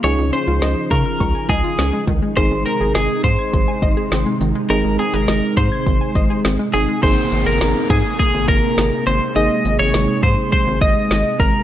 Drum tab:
CC |--------|--------|--------|x-------|
HH |xxxxxxxx|xxxxxxxx|xxxxxxxx|xxxxxxxx|
SD |--o---o-|--o---o-|--o---o-|--o---o-|
BD |---ooo-o|o--ooo--|---ooo--|o--ooo--|

CC |--------|
HH |xxxxxxxx|
SD |--o---o-|
BD |---ooo-o|